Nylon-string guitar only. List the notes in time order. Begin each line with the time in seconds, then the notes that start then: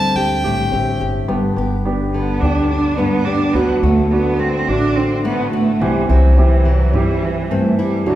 Already playing: D3 G3 C4 G4
0.17 G4
0.45 A2
0.73 G4
1.01 G4
1.28 G2
1.58 G4
2.14 D3
2.98 G2 D4
3.27 G4
3.56 D3
3.83 F#4
4.39 A3
5.24 A2 F#4
5.53 F#4
5.81 C3
6.09 E4
6.65 E3
7.51 G2 C4
7.79 E4
8.06 D3